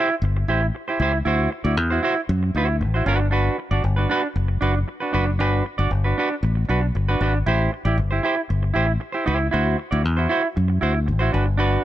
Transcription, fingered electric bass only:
0.22 0.43 G1 loud
0.48 0.69 A1 medium
1.00 1.21 C#2 medium
1.26 1.47 D2 medium
1.65 1.77 D2 loud
1.77 1.98 E2 medium
2.29 2.50 F#2 loud
2.55 2.82 D2 medium
2.81 3.02 A1 medium
3.06 3.48 G1 loud
3.71 3.82 G1 medium
3.84 4.05 G1 loud
4.36 4.57 F#1 medium
4.62 4.83 F#1 medium
5.14 5.40 F#1 medium
5.40 5.61 G1 loud
5.79 5.89 G1 medium
5.91 6.12 G1 medium
6.43 6.64 A1 medium
6.69 6.90 B1 medium
6.95 7.16 G1 medium
7.21 7.41 G#1 medium
7.46 7.67 A1 loud
7.85 7.99 A1 medium
7.98 8.19 G1 medium
8.50 8.71 G1 medium
8.76 8.96 A1 medium
9.27 9.48 C#2 medium
9.54 9.74 D2 loud
9.92 10.05 D2 loud
10.05 10.26 E2 medium
10.57 10.78 F#2 medium
10.82 11.10 D2 medium
11.08 11.29 A1 medium
11.34 11.76 G1 medium

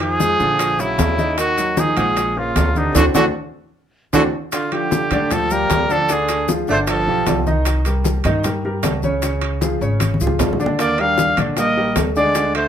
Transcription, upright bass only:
0.00 0.34 F2 medium
0.40 0.95 A#1 medium
0.99 1.91 D#2 medium
1.97 2.52 A#1 medium
2.56 2.93 D2 medium
2.95 3.10 D2 medium
3.15 3.30 D2 loud
4.13 4.28 D2 medium
5.11 5.66 D2 medium
5.70 6.62 D2 medium
6.68 7.04 G1 medium
7.07 7.25 B1 medium
7.27 8.19 C2 medium
8.25 8.80 G2 loud
8.83 9.75 C#2 medium
9.81 10.18 G#1 medium
10.21 10.39 C#2 medium
10.40 11.32 D#2 medium
11.38 11.92 A#1 medium
11.96 12.68 D2 medium

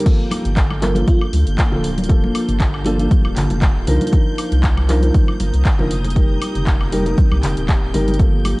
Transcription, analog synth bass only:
0.45 1.04 G1 loud
1.33 1.44 D2 medium
1.47 1.56 G1 medium
1.72 2.31 D1 loud
2.49 3.07 G1 loud
3.25 3.34 D1 medium
3.37 3.47 G1 medium
3.50 3.70 F1 medium
3.76 3.85 D1 loud
3.87 3.98 C2 medium
4.52 5.10 C2 loud
5.40 5.51 G1 medium
5.54 5.63 C2 medium
5.79 6.38 F1 medium
6.55 7.14 F1 loud
7.32 7.41 C2 medium
7.43 7.54 F1 medium
7.57 7.77 D#1 medium
7.82 7.92 D#1 medium
7.94 8.54 G1 medium

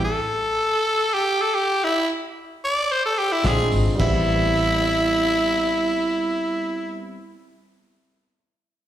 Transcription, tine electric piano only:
3.44 3.94 G#3 medium
3.44 3.94 C4 medium
3.44 3.95 D4 medium
3.44 3.95 F4 medium
3.95 7.17 G3 medium
3.95 7.19 B3 medium
4.00 7.21 C4 medium
4.00 7.23 E4 medium

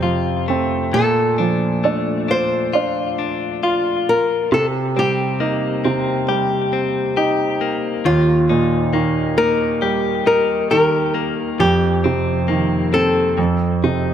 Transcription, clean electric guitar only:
0.00 0.93 F2 medium
0.00 1.03 C4 soft
0.00 2.73 F4 soft
0.48 1.83 A3 soft
0.93 4.52 A#2 medium
1.38 2.27 D4 soft
1.84 4.07 A3 soft
2.28 3.17 D4 soft
2.73 3.62 F4 medium
3.19 4.61 D4 soft
3.63 4.61 F4 medium
4.52 8.05 C3 medium
4.97 5.83 C4 soft
5.40 7.61 A#3 medium
5.84 6.72 C4 medium
6.29 7.17 G4 medium
6.73 8.14 C4 medium
7.17 9.82 G4 medium
7.61 8.93 A#3 medium
8.05 11.62 D#3 medium
8.49 9.37 D#4 medium
8.93 11.14 A#3 medium
9.38 10.26 D#4 medium
9.82 10.70 G4 medium
10.26 12.04 D#4 medium
10.71 11.69 G4 medium
11.14 11.68 A#3 medium
11.60 13.36 F2 medium
12.04 12.92 C4 medium
12.48 13.47 A#3 medium
12.93 13.47 C4 soft
13.38 14.14 F2 medium
13.84 14.14 D#4 soft

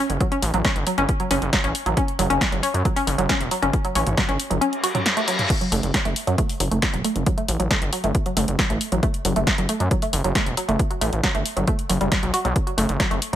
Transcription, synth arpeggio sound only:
0.21 0.25 F#3 medium
0.32 0.36 C#4 loud
0.54 0.58 F#3 medium
0.65 0.69 C#4 loud
0.87 0.91 F#3 medium
0.98 1.02 C#4 loud
1.20 1.25 F#3 medium
1.31 1.35 C#4 loud
1.53 1.58 F#3 medium
1.64 1.69 C#4 loud
1.86 1.91 F#3 medium
1.97 2.02 C#4 loud
2.19 2.24 F#3 medium
2.30 2.35 C#4 loud
2.52 2.57 F#3 medium
2.63 2.68 C#4 loud
2.85 2.90 F#3 medium
2.96 3.01 C#4 loud
3.18 3.23 F#3 medium
3.29 3.34 C#4 loud
3.51 3.56 F#3 medium
3.62 3.67 C#4 loud
3.85 3.89 F#3 medium
3.95 4.00 C#4 loud
4.17 4.22 F#3 medium
4.29 4.33 C#4 loud
4.50 4.55 F#3 medium
4.61 4.66 C#4 loud
4.83 4.88 F#4 medium
4.95 4.99 F#3 medium
5.17 5.20 A3 medium
5.28 5.35 F#3 medium
5.61 5.66 F#3 medium
5.72 5.79 A3 medium
5.94 5.99 F#3 medium
6.05 6.12 A3 medium
6.27 6.32 F#3 medium
6.38 6.45 A3 medium
6.60 6.65 F#3 medium
6.71 6.78 A3 medium
6.94 6.98 F#3 medium
7.04 7.11 A3 medium
7.26 7.31 F#3 medium
7.38 7.44 A3 medium
7.60 7.64 F#3 medium
7.71 7.78 A3 medium
7.93 7.97 F#3 medium
8.04 8.11 A3 medium
8.26 8.31 F#3 medium
8.37 8.44 A3 medium
8.59 8.64 F#3 medium
8.70 8.77 A3 medium
8.92 8.97 F#3 medium
9.03 9.10 A3 medium
9.25 9.30 F#3 medium
9.36 9.43 A3 medium
9.58 9.63 F#3 medium
9.69 9.76 A3 medium
9.91 9.96 F#3 medium
10.02 10.09 A3 medium
10.24 10.29 F#3 medium
10.35 10.42 A3 medium
10.57 10.62 F#3 medium
10.69 10.75 A3 medium
10.90 10.95 F#3 medium
11.01 11.08 A3 medium
11.23 11.28 F#3 medium
11.34 11.41 A3 medium
11.57 11.61 F#3 medium
11.68 11.75 A3 medium
11.89 11.94 F#3 medium
12.01 12.08 G3 medium
12.12 12.16 F#3 medium
12.23 12.30 F#3 medium
12.34 12.41 F#4 medium
12.45 12.49 F#3 medium
12.67 12.71 F#3 medium
12.78 12.85 A3 medium
13.00 13.04 F#3 medium
13.11 13.18 A3 medium

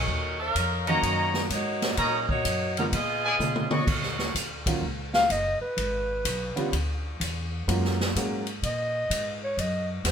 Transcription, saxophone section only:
0.00 0.37 C#4 medium
0.00 0.37 F#4 medium
0.00 0.37 A#4 medium
0.00 0.37 D#5 medium
0.40 0.84 D#4 medium
0.40 0.84 A#4 loud
0.40 0.84 C#5 medium
0.40 0.84 F5 loud
0.87 1.32 C#4 medium
0.87 1.32 F#4 medium
0.87 1.32 A#4 medium
0.87 1.31 D#5 medium
1.52 1.96 A#3 medium
1.52 1.96 D#4 medium
1.52 1.96 F#4 medium
1.52 1.96 C#5 medium
1.98 2.27 F#3 medium
1.98 2.27 C#4 medium
1.98 2.28 D#4 medium
1.98 2.28 A#4 medium
2.29 2.74 A#3 medium
2.29 2.74 D#4 medium
2.29 2.74 F#4 medium
2.29 2.74 C#5 loud
2.77 2.85 F#3 medium
2.77 2.85 C#4 medium
2.77 2.85 D#4 medium
2.77 2.85 A#4 medium
2.94 3.69 B3 medium
2.94 3.69 F4 medium
2.94 3.69 G#4 medium
2.94 3.69 D#5 loud

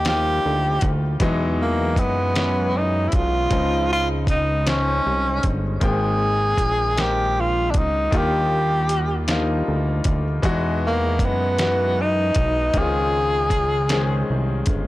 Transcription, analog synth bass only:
0.00 0.40 D#2 loud
0.46 0.79 D2 medium
0.83 1.17 D2 medium
1.22 1.99 E2 loud
1.97 3.09 F#2 medium
3.14 3.48 B1 loud
3.52 5.01 C#2 loud
5.07 5.40 C2 medium
5.45 5.79 G1 loud
5.82 6.55 G#1 loud
6.59 7.77 A#1 medium
7.76 8.09 C#2 medium
8.13 9.63 D#2 loud
9.68 10.02 D2 medium
10.06 10.40 D2 medium
10.44 11.22 E2 loud
11.20 12.32 F#2 medium
12.37 12.71 B1 loud
12.75 14.24 C#2 loud
14.30 14.64 C2 medium
14.68 14.87 G1 loud

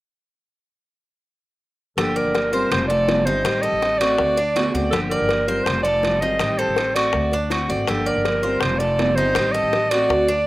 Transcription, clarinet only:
1.97 2.17 A4 medium
2.16 2.73 A#4 medium
2.71 2.87 C5 medium
2.88 3.27 D5 loud
3.25 3.63 C5 medium
3.62 4.00 D#5 loud
3.98 4.73 D5 loud
4.91 4.99 A4 medium
5.09 5.66 A#4 medium
5.64 5.82 C5 medium
5.83 6.22 D5 loud
6.21 6.60 D#5 medium
6.58 6.96 C5 medium
6.95 7.42 D5 medium
7.89 8.07 A4 medium
8.06 8.62 A#4 medium
8.60 8.80 C5 medium
8.78 9.17 D5 loud
9.15 9.54 C5 loud
9.52 9.91 D#5 loud
9.90 10.47 D5 loud

